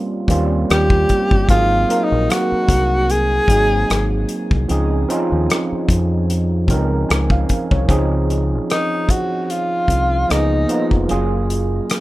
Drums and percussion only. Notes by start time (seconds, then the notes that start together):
0.28 kick, closed hi-hat
0.70 cross-stick, closed hi-hat
0.90 kick
1.09 kick, closed hi-hat
1.31 kick
1.49 kick, closed hi-hat
1.90 closed hi-hat
2.30 cross-stick, closed hi-hat
2.69 kick, closed hi-hat
3.10 closed hi-hat
3.48 kick, closed hi-hat
3.90 cross-stick, closed hi-hat
4.29 closed hi-hat
4.51 kick
4.69 closed hi-hat
5.10 closed hi-hat
5.50 cross-stick, closed hi-hat
5.89 kick, closed hi-hat
6.30 closed hi-hat
6.68 kick, closed hi-hat
7.10 cross-stick, closed hi-hat
7.30 kick
7.49 kick, closed hi-hat
7.71 kick
7.89 kick, closed hi-hat
8.30 closed hi-hat
8.70 cross-stick, closed hi-hat
9.09 kick, closed hi-hat
9.50 closed hi-hat
9.88 kick, closed hi-hat
10.30 cross-stick, closed hi-hat
10.69 closed hi-hat
10.91 kick
11.09 closed hi-hat
11.50 closed hi-hat
11.90 cross-stick, closed hi-hat